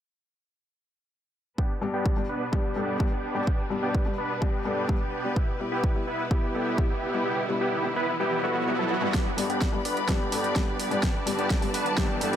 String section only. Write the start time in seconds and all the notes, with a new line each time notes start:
1.58 B2 G3 D4 B4
5.36 B2 G3 E4
9.14 G3 B4 D5 B5
11.03 A5